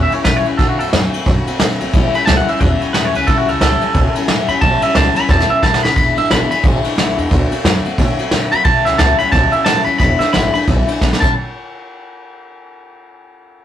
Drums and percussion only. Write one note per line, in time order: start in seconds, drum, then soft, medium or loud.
0.12 ride medium
0.25 kick medium
0.25 snare loud
0.25 ride medium
0.46 ride medium
0.59 kick loud
0.59 snare soft
0.59 ride medium
0.80 ride medium
0.93 snare loud
0.93 ride medium
1.14 ride medium
1.26 kick loud
1.26 snare soft
1.26 ride medium
1.47 ride medium
1.60 snare loud
1.60 ride medium
1.80 ride medium
1.94 kick loud
1.94 ride medium
2.14 ride medium
2.27 snare loud
2.27 ride medium
2.48 ride medium
2.61 kick loud
2.61 ride medium
2.81 ride medium
2.94 snare loud
2.94 ride medium
3.15 ride medium
3.27 kick loud
3.27 ride medium
3.48 ride medium
3.61 snare loud
3.61 ride medium
3.82 ride medium
3.94 kick loud
3.94 ride medium
4.15 ride medium
4.28 snare loud
4.28 ride medium
4.48 ride medium
4.61 kick loud
4.61 ride medium
4.82 ride medium
4.95 snare loud
4.95 ride medium
5.16 ride medium
5.29 kick loud
5.29 snare medium
5.40 snare medium
5.63 kick medium
5.63 snare medium
5.74 snare loud
5.85 snare medium
5.96 kick loud
5.96 ride medium
6.17 ride medium
6.31 snare loud
6.31 ride medium
6.51 ride medium
6.64 kick loud
6.64 ride medium
6.84 ride medium
6.98 snare loud
6.98 ride medium
7.18 ride medium
7.31 kick loud
7.31 ride medium
7.52 ride medium
7.65 snare loud
7.65 ride medium
7.85 ride medium
7.98 kick loud
7.98 snare soft
7.98 ride medium
8.19 ride medium
8.31 snare loud
8.31 ride medium
8.52 ride medium
8.65 kick loud
8.65 ride medium
8.86 snare soft
8.86 ride medium
8.99 snare loud
8.99 ride medium
9.19 ride medium
9.32 kick loud
9.32 snare soft
9.32 ride medium
9.53 ride medium
9.66 snare loud
9.66 ride medium
9.86 ride medium
10.00 kick loud
10.00 snare soft
10.00 ride medium
10.20 snare soft
10.20 ride medium
10.34 snare loud
10.34 ride medium
10.55 ride medium
10.68 kick loud
10.68 ride medium
10.88 ride medium
11.01 kick medium
11.01 snare medium
11.13 snare medium
11.22 kick loud
11.22 crash medium